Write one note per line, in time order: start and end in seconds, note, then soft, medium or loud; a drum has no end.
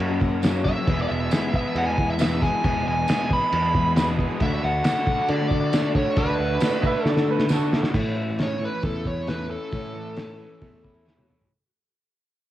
0.00 0.71 F#2 medium
0.00 0.44 F#3 medium
0.00 0.45 A#3 medium
0.00 0.84 A#3 medium
0.00 0.45 C#4 medium
0.00 0.85 C#4 medium
0.00 0.46 F#4 medium
0.00 0.85 F#4 medium
0.00 0.84 A#4 medium
0.07 0.17 F#3 medium
0.07 0.19 A#3 medium
0.07 0.19 C#4 medium
0.07 0.19 F#4 medium
0.19 0.41 F#3 medium
0.19 0.41 A#3 medium
0.19 0.41 C#4 medium
0.19 0.42 F#4 medium
0.19 kick medium
0.42 0.64 F#2 medium
0.42 0.64 C#3 medium
0.42 0.63 F#3 medium
0.42 0.63 A#3 medium
0.42 0.65 C#4 medium
0.42 0.64 F#4 loud
0.42 snare loud
0.42 tambourine loud
0.42 crash medium
0.47 0.63 F#4 medium
0.64 0.76 F#3 medium
0.64 0.76 A#3 medium
0.64 0.76 C#4 medium
0.64 0.74 F#4 medium
0.64 1.01 E5 medium
0.64 kick medium
0.64 snare soft
0.76 0.87 F#3 soft
0.76 0.88 A#3 medium
0.76 0.87 C#4 medium
0.76 0.87 F#4 medium
0.87 1.05 E1 medium
0.87 0.98 E2 medium
0.87 0.98 B2 medium
0.87 0.98 E3 medium
0.87 0.98 G#3 medium
0.87 4.38 B3 medium
0.87 0.98 B3 loud
0.87 4.38 E4 medium
0.87 4.38 G#4 medium
0.87 0.97 G#4 medium
0.87 4.38 B4 medium
0.87 kick loud
0.87 crash medium
0.98 1.31 E3 soft
0.98 1.31 G#3 soft
0.98 1.31 B3 medium
0.98 1.31 G#4 medium
0.98 1.08 D5 medium
1.08 1.28 E1 medium
1.08 1.30 E3 medium
1.08 1.31 G#3 medium
1.08 1.32 B3 medium
1.08 1.33 G#4 medium
1.08 1.54 E5 medium
1.31 1.54 E2 medium
1.31 1.54 B2 medium
1.31 1.51 E3 medium
1.31 1.52 G#3 medium
1.31 1.53 B3 loud
1.31 1.54 G#4 medium
1.31 snare loud
1.31 tambourine loud
1.31 crash medium
1.53 1.64 E3 medium
1.53 1.64 G#3 medium
1.53 1.64 B3 medium
1.53 1.63 G#4 medium
1.53 1.77 E5 medium
1.53 kick medium
1.64 1.87 E3 soft
1.64 1.86 G#3 soft
1.64 1.86 B3 soft
1.64 1.85 G#4 medium
1.76 2.47 E2 medium
1.76 1.86 F#5 medium
1.76 crash medium
1.86 1.95 E3 soft
1.86 1.96 G#3 soft
1.86 1.97 B3 medium
1.86 1.97 G#4 medium
1.86 2.09 G#5 medium
1.96 2.18 E3 medium
1.96 2.18 G#3 medium
1.96 2.19 B3 medium
1.96 2.19 G#4 medium
1.96 kick medium
2.10 2.20 E5 medium
2.19 2.41 E2 medium
2.19 2.42 B2 medium
2.19 2.40 E3 medium
2.19 2.41 G#3 medium
2.19 2.42 B3 medium
2.19 2.42 G#4 medium
2.19 2.43 E5 medium
2.19 snare loud
2.19 tambourine loud
2.19 crash medium
2.41 2.53 E3 medium
2.41 2.53 G#3 medium
2.41 2.53 B3 medium
2.41 2.52 G#4 medium
2.41 2.64 G#5 medium
2.41 kick medium
2.41 snare soft
2.53 2.64 E3 soft
2.53 2.64 G#3 soft
2.53 2.64 B3 soft
2.53 2.64 G#4 medium
2.64 2.82 E1 loud
2.64 2.75 E2 medium
2.64 2.75 B2 medium
2.64 2.76 E3 medium
2.64 2.76 G#3 medium
2.64 2.75 B3 medium
2.64 2.74 G#4 medium
2.64 2.85 G#5 loud
2.64 kick loud
2.64 crash medium
2.75 3.08 E3 soft
2.75 3.08 G#3 medium
2.75 3.09 B3 medium
2.75 3.08 G#4 medium
2.84 3.05 E1 medium
2.84 3.08 G#3 medium
2.84 3.09 B3 medium
2.84 3.09 G#4 medium
2.84 3.33 G#5 medium
2.88 3.07 E3 medium
3.08 3.30 E2 medium
3.08 3.31 B2 medium
3.08 3.30 E3 medium
3.08 3.30 G#3 medium
3.08 3.31 B3 medium
3.08 3.31 G#4 medium
3.08 snare loud
3.08 tambourine loud
3.08 crash medium
3.31 3.42 E3 medium
3.31 3.42 G#3 medium
3.31 3.42 B3 medium
3.31 3.41 G#4 medium
3.31 4.16 B5 loud
3.31 kick loud
3.42 3.65 E3 soft
3.42 3.64 G#3 medium
3.42 3.63 B3 soft
3.42 3.63 G#4 medium
3.52 4.24 E2 medium
3.52 crash medium
3.64 3.74 E3 medium
3.64 3.74 G#3 medium
3.64 3.75 B3 soft
3.64 3.75 G#4 medium
3.75 3.97 E3 medium
3.75 3.97 G#3 medium
3.75 3.97 B3 medium
3.75 3.98 G#4 medium
3.75 kick medium
3.96 4.20 E2 medium
3.96 4.20 B2 medium
3.96 4.18 E3 loud
3.96 4.18 G#3 medium
3.96 4.19 B3 loud
3.96 4.19 G#4 loud
3.96 snare loud
3.96 tambourine loud
3.96 crash medium
4.19 4.30 E3 medium
4.19 4.29 G#3 medium
4.19 4.29 B3 medium
4.19 4.28 G#4 medium
4.19 kick medium
4.29 4.41 E3 medium
4.29 4.41 G#3 soft
4.29 4.41 B3 medium
4.29 4.40 G#4 medium
4.40 4.58 D2 medium
4.40 4.52 D3 medium
4.40 7.91 A3 medium
4.40 4.52 A3 medium
4.40 7.90 D4 medium
4.40 4.52 D4 medium
4.40 7.91 F#4 medium
4.40 4.51 F#4 loud
4.40 7.91 A4 medium
4.40 4.64 E5 loud
4.40 kick loud
4.40 crash medium
4.52 4.84 D4 medium
4.52 4.85 F#4 medium
4.63 4.81 D2 medium
4.63 4.85 A3 medium
4.63 4.86 D4 medium
4.63 4.87 F#4 medium
4.63 5.32 F#5 loud
4.84 5.05 D3 medium
4.84 5.05 A3 medium
4.84 5.06 D4 medium
4.84 5.06 F#4 medium
4.84 snare loud
4.84 tambourine medium
4.84 crash medium
5.06 5.18 D3 medium
5.06 5.18 A3 medium
5.06 5.18 D4 medium
5.06 5.17 F#4 medium
5.06 kick medium
5.18 5.40 A3 soft
5.18 5.39 D4 soft
5.18 5.38 F#4 soft
5.28 6.01 D3 medium
5.28 5.91 D5 loud
5.28 crash medium
5.39 5.50 A3 soft
5.39 5.50 D4 medium
5.39 5.51 F#4 medium
5.50 5.70 D3 medium
5.50 5.71 A3 medium
5.50 5.72 D4 medium
5.50 5.71 F#4 medium
5.50 kick medium
5.72 5.93 D3 medium
5.72 5.93 A3 medium
5.72 5.94 D4 medium
5.72 5.94 F#4 medium
5.72 snare loud
5.72 tambourine loud
5.72 crash medium
5.94 6.06 D3 medium
5.94 6.06 A3 medium
5.94 6.05 D4 medium
5.94 6.04 F#4 medium
5.94 6.18 C#5 medium
5.94 kick loud
6.05 6.15 A3 soft
6.05 6.15 D4 soft
6.05 6.16 F#4 medium
6.16 6.35 D2 loud
6.16 6.28 D3 medium
6.16 6.27 A3 medium
6.16 6.26 D4 medium
6.16 6.25 F#4 medium
6.16 7.05 B4 medium
6.16 kick loud
6.16 crash medium
6.26 6.59 A3 soft
6.26 6.59 D4 medium
6.26 6.59 F#4 medium
6.39 6.57 D2 medium
6.39 6.61 A3 medium
6.39 6.62 D4 medium
6.39 6.62 F#4 medium
6.60 6.81 D3 medium
6.60 6.82 A3 medium
6.60 6.83 D4 medium
6.60 6.83 F#4 medium
6.60 snare loud
6.60 tambourine loud
6.60 crash medium
6.81 6.94 D3 medium
6.81 6.94 A3 medium
6.81 6.93 D4 medium
6.81 6.91 F#4 medium
6.81 6.84 D#5 medium
6.81 kick medium
6.86 7.06 E5 loud
6.93 7.17 A3 soft
6.93 7.15 D4 medium
6.93 7.14 F#4 medium
7.05 7.78 D3 medium
7.05 7.46 A4 medium
7.05 7.29 D5 medium
7.05 snare medium
7.15 7.26 A3 medium
7.15 7.26 D4 medium
7.15 7.27 F#4 medium
7.15 snare medium
7.26 7.48 D3 medium
7.26 7.49 A3 medium
7.26 7.49 D4 medium
7.26 7.49 F#4 medium
7.31 7.51 B4 medium
7.39 snare medium
7.49 7.70 D3 medium
7.49 7.70 A3 medium
7.49 7.71 D4 loud
7.49 7.72 F#4 loud
7.49 snare medium
7.49 tambourine loud
7.53 7.84 A4 medium
7.71 7.83 D3 medium
7.71 7.83 A3 medium
7.71 7.83 D4 medium
7.71 7.82 F#4 medium
7.71 snare loud
7.83 7.94 A3 soft
7.83 7.95 D4 medium
7.83 7.94 F#4 medium
7.83 snare loud
7.94 8.28 A2 medium
7.94 8.66 A2 medium
7.94 8.28 E3 medium
7.94 8.28 A3 medium
7.94 8.28 C#4 medium
7.94 8.27 E4 medium
7.94 kick loud
7.94 crash medium
8.17 8.60 E3 medium
8.28 8.39 A3 soft
8.28 8.39 C#4 soft
8.28 8.39 E4 soft
8.39 8.61 A2 medium
8.39 8.60 E3 medium
8.39 8.61 A3 medium
8.39 8.61 C#4 medium
8.39 8.62 E4 medium
8.39 snare loud
8.39 open hi-hat soft
8.43 8.64 C#5 medium
8.61 8.72 E3 medium
8.61 8.73 A3 medium
8.61 8.72 C#4 medium
8.61 8.71 E4 medium
8.61 8.84 B4 medium
8.72 8.95 A3 soft
8.72 8.94 C#4 soft
8.72 8.93 E4 soft
8.83 9.56 E2 medium
8.83 9.95 A3 medium
8.83 9.07 A4 medium
8.83 kick loud
8.83 open hi-hat soft
8.94 9.04 A3 soft
8.94 9.05 C#4 soft
8.94 9.05 E4 medium
9.05 9.16 E3 medium
9.05 9.16 A3 medium
9.05 9.16 C#4 medium
9.05 9.15 E4 medium
9.05 9.29 C#5 medium
9.05 kick medium
9.16 9.26 A3 soft
9.16 9.26 C#4 soft
9.16 9.26 E4 soft
9.26 9.49 A2 medium
9.26 9.47 E3 medium
9.26 9.48 A3 medium
9.26 9.49 C#4 medium
9.26 9.49 E4 medium
9.26 9.49 B4 medium
9.26 snare loud
9.26 open hi-hat soft
9.49 9.70 E3 soft
9.49 9.70 A3 medium
9.49 9.71 C#4 medium
9.49 9.71 E4 medium
9.49 11.25 A4 medium
9.71 10.05 A2 medium
9.71 10.45 A2 medium
9.71 10.05 E3 medium
9.71 10.05 A3 medium
9.71 10.04 C#4 medium
9.71 10.03 E4 medium
9.71 kick loud
9.71 open hi-hat soft
9.95 10.38 E3 medium
10.05 10.15 A3 soft
10.05 10.15 C#4 soft
10.05 10.16 E4 medium
10.16 10.39 A2 medium
10.16 10.37 E3 medium
10.16 10.37 A3 medium
10.16 10.38 C#4 medium
10.16 10.38 E4 medium
10.16 snare medium
10.16 open hi-hat soft
10.38 10.50 E3 medium
10.38 10.50 A3 soft
10.38 10.50 C#4 medium
10.38 10.49 E4 medium
10.50 10.72 A3 soft
10.50 10.72 C#4 soft
10.50 10.71 E4 medium
10.62 11.34 E2 medium
10.62 11.51 A3 medium
10.62 kick loud
10.62 open hi-hat soft
10.72 10.83 A3 soft
10.72 10.83 C#4 soft
10.72 10.83 E4 medium
10.83 10.95 E3 medium
10.83 10.95 A3 medium
10.83 10.93 C#4 medium
10.83 10.93 E4 medium
10.83 kick medium
10.94 11.05 A3 soft
10.94 11.05 C#4 soft
10.94 11.05 E4 soft
11.05 11.28 A2 medium
11.05 11.26 E3 medium
11.05 11.26 A3 medium
11.05 11.27 C#4 medium
11.05 11.28 E4 medium
11.05 snare soft
11.19 high tom soft
11.27 11.50 E3 soft
11.27 11.50 A3 medium
11.27 11.51 C#4 medium
11.27 11.51 E4 medium
11.27 mid tom medium
11.41 floor tom medium